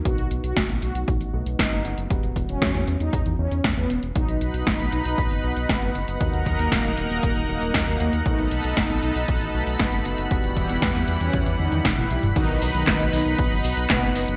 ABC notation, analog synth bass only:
X:1
M:4/4
L:1/16
Q:1/4=117
K:B
V:1 name="Analog synth bass" clef=bass
B,,, B,,, B,,, B,,, F,,, B,,, B,,, B,,, B,,, =A,,, B,,, B,,, F,,, F,,, F,,, F,,, | E,,, E,,, E,,, E,,, E,, E,, E,, E,, E,, E,, E,, E,, E,, E,, E,,, E,,, | B,,, B,,, B,,, B,,, F,,, B,,, B,,, B,,, B,,, F,,, B,,, B,,, F,,, F,,, F,,, F,,, | D,, D,, D,, D,, D,,, D,,, D,,, D,,, D,,, D,,, D,,, D,,, D,, D,, D,, D,, |
B,,, B,,, B,,, B,,, F,,, B,,, B,,, B,,, B,,, =A,,, B,,, B,,, F,,, F,,, F,,, F,,, | E,,, E,,, E,,, E,,, E,, E,, E,, E,, E,, E,, E,, E,, E,,, E,,, B,,, E,,, | B,,, B,,, B,,, B,,, F,,, B,,, B,,, B,,, B,,, F,,, B,,, B,,, F,,, F,,, F,,, F,,, |]